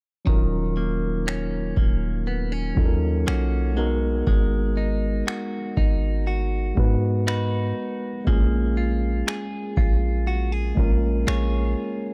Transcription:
0.25 D#1 D#3 F#3 C#4 D#4 F4, kick
0.29 A#4
0.77 A#3
1.27 C#4, finger snap
1.77 D#1 A#3, kick
2.27 B3
2.52 C#4
2.75 D#2 F#3 C#4 D#4 F4, kick
2.79 A4
2.86 A#4
3.27 B1 A#3 C#4 F#4, finger snap
3.75 G#3 B3 D#4 F#4
3.79 A#4
4.27 G#1 G#3, kick
4.77 D#4
5.27 F#4, finger snap
5.77 G#1 D#4, kick
6.27 F#4
6.75 G#2 G#3 B3 D#4 F#4, kick
6.79 B4
7.27 D#4 F#4 B4, finger snap
8.25 A#1 G#3 A#3 C#4 F4, kick
8.29 G#4
8.77 F4
9.27 G#4, finger snap
9.77 A#1 F4, kick
10.27 F#4
10.52 G#4
10.75 A#1 G#3 A#3 C#4 F4, kick
10.79 A#4
11.27 A#1 F4 G#4 C#5, finger snap

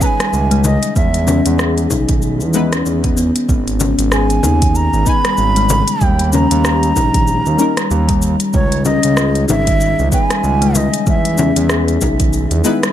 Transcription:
0.00 B3 C#4 B4 A#5, kick, shaker
0.06 G#5
0.19 G3, cross-stick, closed hi-hat, shaker
0.33 C#2, shaker
0.51 G#3, closed hi-hat, shaker
0.64 D#5, frame drum, shaker
0.83 closed hi-hat, shaker
0.96 E2 G#3 E5, kick, shaker
1.14 closed hi-hat, shaker
1.27 C#4, frame drum, shaker
1.46 E2, closed hi-hat, shaker
1.58 G#4, cross-stick, shaker
1.78 closed hi-hat, shaker
1.90 B1 D#4, kick, frame drum, shaker
2.09 D#3, kick, closed hi-hat, shaker
2.22 shaker
2.41 E2, shaker
2.54 G#3 B3 D#4 E4 B4, shaker
2.73 C#4, cross-stick, closed hi-hat, shaker
2.86 E2, shaker
3.04 B3, kick, closed hi-hat, shaker
3.17 B3, shaker
3.36 closed hi-hat, shaker
3.49 G#1 G#3, kick, shaker
3.68 closed hi-hat, shaker
3.80 C#4, frame drum, shaker
3.99 G#1, closed hi-hat, shaker
4.11 G#4 G#5, cross-stick, shaker
4.30 closed hi-hat, shaker
4.43 D#2 D#4, frame drum, shaker
4.62 D#3, kick, closed hi-hat, shaker
4.75 A#5, shaker
4.93 G#1, shaker
5.05 B3 D#4 G#5 B5, kick, shaker
5.25 G3, cross-stick, closed hi-hat, shaker
5.37 G#1, shaker
5.56 G#3, closed hi-hat, shaker
5.69 frame drum, shaker
5.88 closed hi-hat, shaker
6.01 D#2 G3 G5, kick, shaker
6.19 closed hi-hat, shaker
6.33 C#4 A#5, frame drum, shaker
6.51 D#2, closed hi-hat, shaker
6.65 G4, cross-stick, shaker
6.83 closed hi-hat, shaker
6.96 A#1 D#4, kick, frame drum, shaker
7.14 D#3, kick, closed hi-hat, shaker
7.27 shaker
7.46 D#2, shaker
7.57 G3 A#3 C#4 D#4, shaker
7.61 A#4
7.77 G3, cross-stick, closed hi-hat, shaker
7.91 D#2, shaker
8.08 G3, kick, closed hi-hat, shaker
8.22 shaker
8.40 closed hi-hat, shaker
8.53 C#2 G#3 C#5, kick, shaker
8.72 closed hi-hat, shaker
8.85 C#4 D#5, frame drum, shaker
9.03 C#2, closed hi-hat, shaker
9.17 G#4, cross-stick, shaker
9.35 closed hi-hat, shaker
9.48 G#1 D#4 E5, frame drum, shaker
9.67 D#3, kick, closed hi-hat, shaker
9.81 shaker
9.99 C#2, shaker
10.11 B3 C#4 B4 G#5, kick, shaker
10.30 G3, cross-stick, closed hi-hat, shaker
10.44 C#2, shaker
10.62 G#3, closed hi-hat, shaker
10.75 D#5, frame drum, shaker
10.94 closed hi-hat, shaker
11.07 E2 G#3 E5, kick, shaker
11.25 closed hi-hat, shaker
11.38 C#4, frame drum, shaker
11.56 E2, closed hi-hat, shaker
11.69 G#4, cross-stick, shaker
11.88 closed hi-hat, shaker
12.01 B1 D#4, kick, frame drum, shaker
12.19 D#3, kick, closed hi-hat, shaker
12.33 shaker
12.51 E2, closed hi-hat, shaker
12.64 G#3 B3 D#4 E4 B4, shaker
12.83 G3, cross-stick, closed hi-hat, shaker

